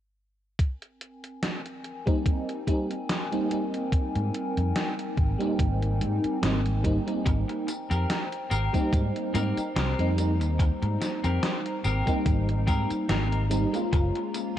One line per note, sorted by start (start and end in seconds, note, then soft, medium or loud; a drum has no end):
0.59 7.22 C4 medium
0.59 7.22 A#4 medium
0.59 7.22 G5 medium
0.59 7.22 G#5 medium
0.59 kick loud
0.59 closed hi-hat medium
0.82 closed hi-hat soft
1.01 closed hi-hat medium
1.24 closed hi-hat soft
1.43 snare loud
1.43 closed hi-hat medium
1.66 closed hi-hat soft
1.84 closed hi-hat soft
2.06 2.62 G3 medium
2.06 2.63 A#3 medium
2.06 2.63 C4 medium
2.06 2.63 D#4 loud
2.06 kick loud
2.06 closed hi-hat soft
2.26 kick loud
2.26 closed hi-hat medium
2.49 closed hi-hat soft
2.67 2.92 G3 medium
2.67 2.92 A#3 medium
2.67 2.93 C4 medium
2.67 2.93 D#4 medium
2.67 kick medium
2.67 closed hi-hat medium
2.91 closed hi-hat soft
3.09 snare loud
3.09 closed hi-hat medium
3.31 3.46 G3 medium
3.31 3.46 A#3 medium
3.31 3.46 C4 medium
3.31 3.47 D#4 medium
3.31 closed hi-hat soft
3.49 5.34 G3 medium
3.49 5.34 A#3 medium
3.49 5.35 C4 medium
3.49 5.35 D#4 medium
3.49 closed hi-hat medium
3.74 closed hi-hat soft
3.92 muted fingered electric bass stroke soft
3.92 kick loud
3.92 closed hi-hat medium
4.15 4.29 G#2 medium
4.15 closed hi-hat soft
4.34 closed hi-hat medium
4.57 4.71 F2 medium
4.57 closed hi-hat soft
4.76 snare loud
4.76 closed hi-hat medium
4.99 closed hi-hat soft
5.17 5.34 G#1 medium
5.17 kick loud
5.17 closed hi-hat soft
5.38 6.37 G3 medium
5.38 6.38 A#3 medium
5.38 6.38 C4 medium
5.38 6.39 D#4 loud
5.38 closed hi-hat soft
5.59 6.03 G#1 medium
5.59 kick loud
5.59 closed hi-hat medium
5.83 closed hi-hat soft
6.01 6.18 G#2 medium
6.01 closed hi-hat medium
6.24 muted fingered electric bass stroke soft
6.24 closed hi-hat soft
6.42 6.97 G#1 medium
6.42 6.79 G3 medium
6.42 6.79 A#3 medium
6.42 6.80 C4 medium
6.42 6.80 D#4 medium
6.42 snare loud
6.42 closed hi-hat loud
6.66 closed hi-hat soft
6.83 7.01 G3 medium
6.83 7.01 A#3 medium
6.83 7.02 C4 medium
6.83 7.02 D#4 loud
6.83 kick medium
6.83 closed hi-hat medium
7.06 7.67 G3 medium
7.06 7.67 A#3 medium
7.06 7.68 C4 medium
7.06 7.68 D#4 medium
7.06 closed hi-hat soft
7.25 7.43 G#1 loud
7.25 13.88 C5 medium
7.25 10.56 G5 medium
7.25 14.59 A#5 medium
7.25 muted clean electric guitar stroke loud
7.25 kick loud
7.25 closed hi-hat medium
7.25 tambourine soft
7.48 muted clean electric guitar stroke soft
7.48 closed hi-hat soft
7.67 muted clean electric guitar stroke soft
7.67 closed hi-hat medium
7.67 tambourine medium
7.90 8.04 F2 medium
7.90 8.20 C4 medium
7.90 8.21 G4 medium
7.90 8.21 A#4 medium
7.90 closed hi-hat soft
7.90 tambourine soft
8.10 snare loud
8.10 closed hi-hat medium
8.10 tambourine soft
8.32 closed hi-hat soft
8.50 8.68 G#1 medium
8.50 8.92 C4 medium
8.50 8.93 G4 medium
8.50 8.93 A#4 medium
8.50 tambourine medium
8.73 9.29 G3 medium
8.73 9.30 A#3 medium
8.73 9.30 C4 medium
8.73 9.30 D#4 loud
8.73 kick medium
8.73 closed hi-hat soft
8.73 tambourine soft
8.93 9.09 G#2 medium
8.93 kick loud
8.93 closed hi-hat medium
8.93 tambourine soft
9.16 closed hi-hat soft
9.34 9.51 G#2 medium
9.34 9.59 G3 medium
9.34 9.59 A#3 medium
9.34 9.57 C4 loud
9.34 9.60 C4 medium
9.34 9.60 D#4 loud
9.34 9.57 G4 medium
9.34 9.58 A#4 loud
9.34 closed hi-hat medium
9.34 tambourine medium
9.57 muted fingered electric bass stroke soft
9.57 closed hi-hat soft
9.57 tambourine soft
9.76 9.93 C2 medium
9.76 10.08 C4 medium
9.76 10.08 G4 medium
9.76 10.09 A#4 medium
9.76 snare loud
9.76 closed hi-hat medium
9.76 tambourine soft
9.98 10.40 F2 medium
9.98 10.13 G3 medium
9.98 10.13 A#3 medium
9.98 10.13 C4 medium
9.98 10.14 D#4 loud
9.98 closed hi-hat soft
10.16 12.01 G3 medium
10.16 12.02 A#3 medium
10.16 12.02 C4 medium
10.16 12.03 D#4 medium
10.16 closed hi-hat medium
10.16 tambourine medium
10.40 10.70 D#2 loud
10.40 muted clean electric guitar stroke soft
10.40 closed hi-hat soft
10.40 tambourine soft
10.59 muted clean electric guitar stroke loud
10.59 kick loud
10.59 closed hi-hat medium
10.59 tambourine soft
10.82 10.96 G#2 medium
10.82 muted clean electric guitar stroke soft
10.82 closed hi-hat soft
11.01 muted clean electric guitar stroke soft
11.01 snare medium
11.01 closed hi-hat medium
11.01 tambourine medium
11.24 11.38 F2 medium
11.24 11.54 C4 medium
11.24 11.54 G4 medium
11.24 11.55 A#4 medium
11.24 closed hi-hat soft
11.24 tambourine soft
11.43 snare loud
11.43 closed hi-hat medium
11.43 tambourine soft
11.66 closed hi-hat soft
11.84 12.01 G#1 medium
11.84 12.26 C4 medium
11.84 12.26 G4 medium
11.84 12.27 A#4 medium
11.84 tambourine medium
12.06 13.04 G3 medium
12.06 13.05 A#3 medium
12.06 13.05 C4 medium
12.06 13.05 D#4 loud
12.06 kick medium
12.06 closed hi-hat soft
12.06 tambourine soft
12.26 12.69 G#1 medium
12.26 kick loud
12.26 closed hi-hat loud
12.26 tambourine soft
12.49 closed hi-hat soft
12.67 12.84 G#2 medium
12.67 12.90 C4 loud
12.67 12.91 G4 medium
12.67 12.91 A#4 loud
12.67 kick loud
12.67 closed hi-hat medium
12.67 tambourine medium
12.90 muted fingered electric bass stroke soft
12.90 closed hi-hat soft
12.90 tambourine soft
13.08 13.64 G#1 medium
13.08 13.46 G3 medium
13.08 13.46 A#3 medium
13.08 13.41 C4 medium
13.08 13.46 C4 medium
13.08 13.47 D#4 medium
13.08 13.42 G4 medium
13.08 13.42 A#4 medium
13.08 snare loud
13.08 closed hi-hat loud
13.08 tambourine soft
13.32 closed hi-hat soft
13.50 13.68 G3 medium
13.50 13.68 A#3 medium
13.50 13.68 C4 medium
13.50 13.68 D#4 loud
13.50 closed hi-hat medium
13.50 tambourine medium
13.72 14.59 G#3 medium
13.72 14.59 A#3 medium
13.72 14.59 C#4 medium
13.72 14.59 F4 medium
13.72 muted clean electric guitar stroke soft
13.72 closed hi-hat soft
13.72 tambourine soft
13.92 14.09 F#1 loud
13.92 14.59 F5 medium
13.92 muted clean electric guitar stroke loud
13.92 kick loud
13.92 closed hi-hat medium
13.92 tambourine soft
14.15 muted clean electric guitar stroke soft
14.15 closed hi-hat soft
14.34 muted clean electric guitar stroke soft
14.34 closed hi-hat medium
14.34 tambourine medium